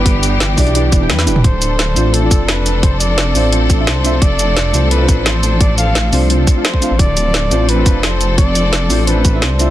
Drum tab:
HH |x-x-x-oxx-x-x-x-|x-x-x-x-x-x-x-x-|x-x-x-o-x-x-x-x-|x-x-x-x-x-x-x-x-|
SH |--x---x---x---x-|--x---x---x---x-|--x---x---x---x-|--x---x---x---x-|
SD |----o-------oo--|----o-------o---|----o-------o---|----o-------o---|
T1 |------------o---|----------------|----------------|----------------|
T2 |---------------o|----------------|----------------|----------------|
BD |o-----o---o-----|o---------o-----|o---------o-----|o---------o-----|

HH |x-x-x-o-x-x-x-x-|x-x-x-x-x-x-x-x-|x-x-x-o-x-x-x-x-|
SH |--x---x---x---x-|--x---x---x---x-|--x---x---x---x-|
SD |----o-------o---|----o-------o---|----o-------o---|
T1 |----------------|----------------|----------------|
T2 |----------------|----------------|----------------|
BD |o---------o--o--|o---------o-----|o---------o-----|